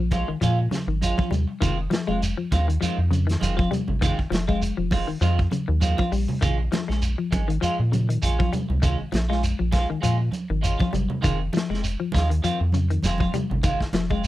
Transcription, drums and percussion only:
0.11 kick medium
0.11 closed hi-hat soft
0.11 high conga medium
0.11 shekere soft
0.41 closed hi-hat medium
0.41 shekere medium
0.71 snare soft
0.71 closed hi-hat soft
0.71 high conga medium
0.71 shekere soft
1.02 closed hi-hat medium
1.02 high conga medium
1.02 shekere medium
1.18 kick medium
1.18 high conga medium
1.31 closed hi-hat soft
1.31 high conga medium
1.31 low conga medium
1.31 shekere soft
1.62 kick medium
1.62 closed hi-hat medium
1.62 low conga medium
1.62 shekere medium
1.91 snare medium
1.91 closed hi-hat soft
1.91 high conga medium
1.91 shekere soft
2.09 high conga medium
2.22 closed hi-hat medium
2.22 shekere medium
2.52 kick medium
2.52 closed hi-hat medium
2.52 high conga loud
2.52 shekere soft
2.70 closed hi-hat medium
2.82 closed hi-hat medium
2.82 shekere medium
3.11 closed hi-hat soft
3.11 high conga medium
3.11 shekere soft
3.29 snare soft
3.29 closed hi-hat medium
3.41 closed hi-hat medium
3.41 high conga medium
3.41 shekere medium
3.59 kick medium
3.59 high conga medium
3.72 closed hi-hat medium
3.72 high conga medium
3.72 low conga medium
3.72 shekere soft
3.88 low conga medium
4.02 kick medium
4.02 closed hi-hat medium
4.02 low conga medium
4.02 shekere medium
4.19 kick medium
4.32 snare medium
4.32 closed hi-hat medium
4.32 high conga medium
4.32 shekere soft
4.49 kick medium
4.49 high conga medium
4.62 closed hi-hat medium
4.62 shekere medium
4.91 kick medium
4.91 open hi-hat medium
4.91 high conga medium
4.91 shekere soft
5.22 closed hi-hat medium
5.22 shekere medium
5.39 kick medium
5.51 closed hi-hat soft
5.51 high conga medium
5.51 shekere soft
5.81 closed hi-hat medium
5.81 high conga loud
5.81 shekere medium
5.98 kick medium
5.98 high conga medium
6.12 open hi-hat medium
6.12 shekere soft
6.29 low conga medium
6.42 kick medium
6.42 closed hi-hat medium
6.42 low conga medium
6.42 shekere medium
6.72 snare medium
6.72 closed hi-hat soft
6.72 high conga medium
6.72 shekere soft
6.90 snare soft
7.02 closed hi-hat medium
7.02 shekere medium
7.32 kick medium
7.32 closed hi-hat soft
7.32 high conga medium
7.32 shekere soft
7.50 closed hi-hat medium
7.63 closed hi-hat medium
7.63 shekere medium
7.93 closed hi-hat soft
7.93 high conga medium
7.93 shekere soft
8.10 closed hi-hat medium
8.22 closed hi-hat medium
8.22 shekere medium
8.40 kick medium
8.40 high conga medium
8.53 closed hi-hat medium
8.53 high conga medium
8.53 low conga medium
8.53 shekere soft
8.70 low conga medium
8.83 kick medium
8.83 closed hi-hat medium
8.83 low conga medium
8.83 shekere medium
9.12 snare medium
9.12 closed hi-hat medium
9.12 high conga medium
9.12 shekere soft
9.32 snare soft
9.43 closed hi-hat medium
9.43 shekere medium
9.72 kick medium
9.72 snare soft
9.72 closed hi-hat medium
9.72 high conga medium
9.72 shekere soft
10.03 closed hi-hat medium
10.03 shekere medium
10.32 closed hi-hat soft
10.32 high conga medium
10.32 shekere soft
10.64 closed hi-hat medium
10.64 shekere medium
10.80 kick medium
10.80 high conga medium
10.93 closed hi-hat medium
10.93 high conga medium
10.93 low conga medium
10.93 shekere soft
11.10 low conga medium
11.23 kick medium
11.23 closed hi-hat medium
11.23 low conga medium
11.23 shekere medium
11.53 closed hi-hat soft
11.53 high conga medium
11.53 shekere soft
11.57 snare medium
11.74 snare soft
11.84 closed hi-hat medium
11.84 shekere medium
12.12 kick medium
12.12 closed hi-hat soft
12.12 high conga loud
12.12 shekere soft
12.17 snare soft
12.31 closed hi-hat soft
12.44 closed hi-hat medium
12.44 shekere medium
12.72 closed hi-hat soft
12.72 high conga medium
12.72 shekere soft
12.90 closed hi-hat soft
13.03 snare soft
13.03 closed hi-hat medium
13.03 high conga medium
13.03 shekere medium
13.18 kick medium
13.18 high conga medium
13.34 closed hi-hat medium
13.34 high conga medium
13.34 low conga medium
13.34 shekere soft
13.51 low conga medium
13.63 kick medium
13.63 closed hi-hat medium
13.63 low conga medium
13.63 shekere medium
13.80 kick medium
13.80 snare soft
13.93 snare medium
13.93 closed hi-hat medium
13.93 high conga medium
13.93 shekere soft
14.10 kick medium
14.10 high conga medium
14.24 shekere medium

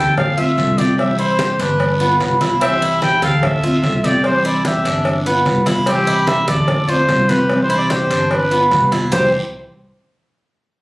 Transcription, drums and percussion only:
0.17 cowbell loud
0.17 high conga soft
0.17 low conga medium
0.17 long guiro medium
0.38 high conga soft
0.57 cowbell medium
0.57 high conga medium
0.57 short guiro medium
0.78 high conga medium
0.78 short guiro medium
0.98 cowbell loud
0.98 high conga soft
0.98 long guiro medium
1.19 high conga soft
1.39 cowbell medium
1.39 high conga loud
1.39 short guiro medium
1.60 cowbell medium
1.60 short guiro medium
1.80 cowbell loud
1.80 high conga soft
1.80 long guiro medium
2.00 high conga soft
2.20 cowbell medium
2.20 high conga medium
2.20 short guiro medium
2.41 cowbell medium
2.41 high conga medium
2.41 short guiro medium
2.61 cowbell loud
2.61 high conga soft
2.61 long guiro medium
2.82 high conga soft
3.02 cowbell medium
3.02 high conga loud
3.02 short guiro medium
3.22 high conga loud
3.22 short guiro medium
3.43 cowbell loud
3.43 high conga soft
3.43 low conga loud
3.43 long guiro medium
3.83 cowbell medium
3.83 high conga medium
3.83 short guiro medium
4.04 high conga loud
4.04 short guiro medium
4.24 cowbell loud
4.24 high conga soft
4.24 long guiro medium
4.45 high conga soft
4.65 cowbell medium
4.65 high conga loud
4.65 short guiro medium
4.85 cowbell medium
4.85 short guiro medium
5.05 cowbell loud
5.05 high conga soft
5.05 long guiro medium
5.25 high conga soft
5.46 cowbell medium
5.46 high conga medium
5.46 short guiro medium
5.66 cowbell medium
5.66 high conga loud
5.66 short guiro medium
5.86 cowbell loud
5.86 high conga soft
5.86 long guiro medium
6.07 high conga soft
6.27 cowbell medium
6.27 high conga loud
6.27 short guiro medium
6.48 high conga loud
6.48 short guiro medium
6.68 cowbell loud
6.68 high conga soft
6.68 low conga medium
6.68 long guiro medium
6.89 high conga soft
7.09 cowbell medium
7.09 high conga medium
7.09 short guiro medium
7.29 high conga medium
7.29 short guiro medium
7.49 cowbell loud
7.49 high conga soft
7.49 long guiro medium
7.70 high conga soft
7.90 cowbell medium
7.90 high conga loud
7.90 short guiro medium
8.10 cowbell medium
8.10 short guiro medium
8.31 cowbell loud
8.31 high conga soft
8.31 long guiro medium
8.51 high conga soft
8.71 cowbell medium
8.71 high conga medium
8.71 short guiro medium
8.92 cowbell medium
8.92 high conga medium
8.92 short guiro medium
9.12 low bongo loud
9.12 low conga loud
9.12 long guiro loud

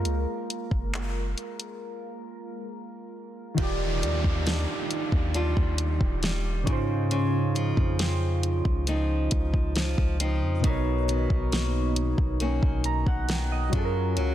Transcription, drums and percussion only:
0.05 closed hi-hat medium
0.50 closed hi-hat medium
0.71 kick medium
0.94 clap loud
0.94 closed hi-hat medium
1.38 closed hi-hat medium
1.60 closed hi-hat soft
3.58 kick loud
3.58 closed hi-hat medium
4.03 closed hi-hat medium
4.24 kick medium
4.47 snare loud
4.47 closed hi-hat medium
4.91 closed hi-hat medium
5.12 kick loud
5.34 closed hi-hat medium
5.57 kick loud
5.78 closed hi-hat medium
6.01 kick medium
6.23 snare loud
6.23 closed hi-hat medium
6.67 kick loud
6.67 closed hi-hat medium
7.11 closed hi-hat medium
7.56 closed hi-hat medium
7.77 kick medium
7.99 snare loud
7.99 closed hi-hat medium
8.43 closed hi-hat medium
8.65 kick loud
8.87 closed hi-hat medium
9.31 kick loud
9.31 closed hi-hat medium
9.54 kick medium
9.76 snare loud
9.76 closed hi-hat medium
9.98 kick medium
10.20 closed hi-hat medium
10.64 kick loud
10.64 closed hi-hat medium
11.09 closed hi-hat medium
11.30 kick medium
11.52 snare loud
11.52 closed hi-hat medium
11.96 closed hi-hat medium
12.18 kick medium
12.40 closed hi-hat medium
12.63 kick loud
12.84 closed hi-hat medium
13.06 kick loud
13.29 snare loud
13.29 closed hi-hat medium
13.73 kick loud
13.73 closed hi-hat medium
14.17 closed hi-hat medium

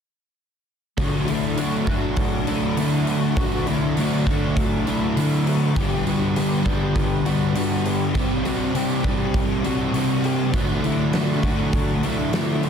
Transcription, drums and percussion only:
0.98 kick medium
0.98 open hi-hat medium
1.28 open hi-hat soft
1.57 open hi-hat medium
1.87 kick medium
1.87 open hi-hat soft
2.16 kick medium
2.16 open hi-hat medium
2.47 open hi-hat soft
2.77 open hi-hat medium
3.07 open hi-hat soft
3.37 kick loud
3.37 open hi-hat medium
3.67 open hi-hat soft
3.97 open hi-hat medium
4.27 kick medium
4.27 open hi-hat soft
4.57 kick medium
4.57 open hi-hat medium
4.87 open hi-hat soft
5.17 open hi-hat medium
5.47 open hi-hat soft
5.76 kick medium
5.76 open hi-hat medium
6.07 open hi-hat soft
6.36 open hi-hat medium
6.66 kick medium
6.66 open hi-hat soft
6.96 kick medium
6.96 open hi-hat medium
7.26 open hi-hat soft
7.55 open hi-hat medium
7.85 open hi-hat soft
8.15 kick medium
8.15 open hi-hat medium
8.45 open hi-hat soft
8.75 open hi-hat medium
9.04 kick medium
9.04 open hi-hat soft
9.34 kick medium
9.34 open hi-hat medium
9.64 open hi-hat soft
9.94 open hi-hat medium
10.24 open hi-hat soft
10.54 kick medium
10.54 open hi-hat medium
10.84 open hi-hat soft
11.13 snare loud
11.13 open hi-hat medium
11.43 kick medium
11.43 open hi-hat soft
11.73 kick medium
11.73 open hi-hat medium
12.03 open hi-hat soft
12.33 snare loud
12.33 open hi-hat medium
12.63 open hi-hat soft

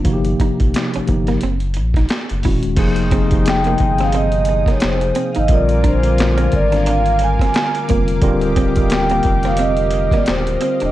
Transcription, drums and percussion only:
0.04 kick medium
0.04 closed hi-hat medium
0.24 closed hi-hat soft
0.40 kick medium
0.40 closed hi-hat medium
0.60 kick medium
0.60 closed hi-hat soft
0.74 snare medium
0.74 clap medium
0.74 closed hi-hat medium
0.93 closed hi-hat soft
1.07 kick medium
1.07 closed hi-hat soft
1.27 snare soft
1.27 closed hi-hat soft
1.41 closed hi-hat medium
1.60 closed hi-hat soft
1.74 closed hi-hat medium
1.94 kick medium
1.94 snare soft
1.94 closed hi-hat soft
2.09 snare medium
2.09 clap medium
2.09 closed hi-hat medium
2.30 closed hi-hat soft
2.43 kick medium
2.43 open hi-hat soft
2.63 closed hi-hat medium
2.77 kick loud
2.77 closed hi-hat medium
2.77 crash medium
2.96 closed hi-hat medium
3.11 kick medium
3.11 closed hi-hat medium
3.31 kick medium
3.31 closed hi-hat medium
3.46 snare loud
3.46 clap medium
3.46 closed hi-hat medium
3.64 closed hi-hat soft
3.78 kick medium
3.78 closed hi-hat medium
3.98 snare soft
3.98 closed hi-hat soft
4.13 closed hi-hat medium
4.32 closed hi-hat soft
4.45 closed hi-hat medium
4.66 kick medium
4.66 snare soft
4.66 closed hi-hat soft
4.80 snare loud
4.80 clap medium
4.80 closed hi-hat medium
5.01 closed hi-hat soft
5.15 closed hi-hat medium
5.35 closed hi-hat medium
5.48 kick loud
5.48 closed hi-hat medium
5.69 closed hi-hat soft
5.84 kick medium
5.84 closed hi-hat medium
6.03 closed hi-hat medium
6.18 snare loud
6.18 clap medium
6.18 closed hi-hat medium
6.38 closed hi-hat soft
6.52 kick medium
6.52 closed hi-hat medium
6.72 snare soft
6.72 closed hi-hat soft
6.86 closed hi-hat medium
7.06 closed hi-hat soft
7.19 closed hi-hat medium
7.39 kick medium
7.39 snare soft
7.39 closed hi-hat soft
7.54 snare loud
7.54 clap medium
7.54 closed hi-hat medium
7.75 closed hi-hat soft
7.89 kick medium
7.89 closed hi-hat medium
8.08 closed hi-hat medium
8.22 kick loud
8.22 closed hi-hat medium
8.41 closed hi-hat soft
8.56 kick medium
8.56 closed hi-hat medium
8.76 kick medium
8.76 closed hi-hat medium
8.90 snare loud
8.90 clap medium
8.90 closed hi-hat medium
9.10 closed hi-hat soft
9.23 kick medium
9.23 closed hi-hat medium
9.43 snare soft
9.43 closed hi-hat soft
9.57 closed hi-hat medium
9.77 closed hi-hat soft
9.90 closed hi-hat medium
10.11 kick medium
10.11 snare soft
10.11 closed hi-hat soft
10.26 snare loud
10.26 clap medium
10.26 closed hi-hat medium
10.47 closed hi-hat medium
10.61 closed hi-hat medium
10.80 closed hi-hat medium

